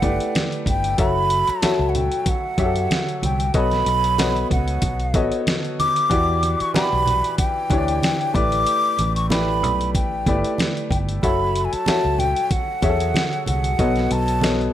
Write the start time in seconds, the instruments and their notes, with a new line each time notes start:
Already playing: grand piano A3 E4 G4 B4 D5, flute F#5
0.02 grand piano A3 E4 G4 B4 D5, kick, closed hi-hat, muted conga
0.20 closed hi-hat
0.35 snare, closed hi-hat, high conga
0.52 closed hi-hat
0.66 fingered electric bass G1, flute G5, kick, closed hi-hat, high conga
0.84 closed hi-hat
0.98 fingered electric bass F#1, grand piano F#3 F#4 A4 C#5 E5, flute B5, kick, closed hi-hat
1.30 closed hi-hat
1.47 flute A5, muted fingered electric bass stroke, closed hi-hat
1.62 grand piano F#3 F#4 A4 C#5 E5, muted fingered electric bass stroke, snare, closed hi-hat, high conga
1.79 fingered electric bass C#2
1.89 flute F#5
1.95 flute G5, closed hi-hat, low conga
2.12 closed hi-hat
2.26 flute F#5, kick, closed hi-hat, muted conga
2.58 fingered electric bass F#2, grand piano F#3 F#4 G4 C#5 E5, kick, closed hi-hat, muted conga
2.65 grand piano A4
2.76 closed hi-hat
2.91 snare, closed hi-hat, high conga
3.09 closed hi-hat
3.22 fingered electric bass C2, flute G5, closed hi-hat, high conga
3.40 closed hi-hat
3.54 fingered electric bass B1, grand piano B3 F#4 A4 C#5 D#5, flute B5, kick, closed hi-hat
3.71 snare, closed hi-hat
3.86 fingered electric bass B1, closed hi-hat
4.04 closed hi-hat
4.18 grand piano B3 F#4 A4 C#5 D#5, snare, closed hi-hat, high conga
4.36 closed hi-hat
4.50 fingered electric bass C#2, flute F#5, kick, closed hi-hat, low conga
4.68 closed hi-hat
4.82 fingered electric bass B1, kick, closed hi-hat, muted conga
5.00 closed hi-hat
5.14 fingered electric bass A1, grand piano B3 F#4 A4 C#5 D#5, kick, closed hi-hat, muted conga
5.32 closed hi-hat
5.47 snare, closed hi-hat, high conga
5.65 closed hi-hat
5.80 flute D6, closed hi-hat, high conga
5.96 closed hi-hat
6.10 fingered electric bass E2, grand piano E3 E4 F#4 G4 D5, kick, closed hi-hat
6.43 closed hi-hat, muted conga
6.60 flute C#6, muted fingered electric bass stroke, closed hi-hat
6.74 grand piano E3 E4 F#4 G4 D5, flute B5, muted fingered electric bass stroke, snare, closed hi-hat, high conga
6.93 fingered electric bass B1
7.06 closed hi-hat, low conga
7.24 closed hi-hat
7.38 flute G5, kick, closed hi-hat, muted conga
7.70 fingered electric bass D2, grand piano E3 D4 E4 G4 C#5, kick, closed hi-hat, muted conga
7.78 grand piano D5
7.88 closed hi-hat
8.03 snare, closed hi-hat, high conga
8.21 closed hi-hat
8.34 fingered electric bass A1, grand piano A3 E4 G4 B4 D5, flute D6, kick, closed hi-hat, high conga
8.52 closed hi-hat
8.66 closed hi-hat
8.99 fingered electric bass A1, closed hi-hat, muted conga
9.16 flute C#6, closed hi-hat
9.30 grand piano A3 E4 G4 B4 D5, flute B5, snare, closed hi-hat, high conga
9.63 fingered electric bass B1, closed hi-hat, low conga
9.81 closed hi-hat
9.94 fingered electric bass A1, flute G5, kick, closed hi-hat, muted conga
10.26 fingered electric bass G1, grand piano A3 E4 G4 B4 D5, kick, closed hi-hat, muted conga
10.44 closed hi-hat
10.58 snare, closed hi-hat, high conga
10.77 closed hi-hat
10.90 fingered electric bass G1, flute G5, kick, closed hi-hat, high conga
11.09 closed hi-hat
11.23 fingered electric bass F#1, grand piano F#3 F#4 A4 C#5 E5, flute B5, kick, closed hi-hat
11.56 closed hi-hat
11.65 flute G#5
11.73 flute A5, muted fingered electric bass stroke, closed hi-hat
11.86 grand piano F#3 F#4 A4 C#5 E5, muted fingered electric bass stroke, snare, closed hi-hat, high conga
12.05 fingered electric bass C#2
12.18 flute G5, closed hi-hat, low conga
12.36 closed hi-hat
12.51 flute F#5, kick, closed hi-hat, muted conga
12.82 fingered electric bass E2, grand piano F#3 F#4 G#4 C#5 E5, kick, closed hi-hat, muted conga
12.89 grand piano A4
13.00 closed hi-hat
13.14 snare, closed hi-hat, high conga
13.33 closed hi-hat
13.46 fingered electric bass C2, flute F#5, closed hi-hat, high conga
13.64 closed hi-hat
13.79 fingered electric bass B1, grand piano B2 B3 A4 C#5 D#5, kick, closed hi-hat
13.96 snare, closed hi-hat
14.11 fingered electric bass B1, flute A5, closed hi-hat, muted conga
14.28 closed hi-hat
14.41 grand piano B2 B3 A4 C#5 D#5, snare, closed hi-hat, high conga
14.61 closed hi-hat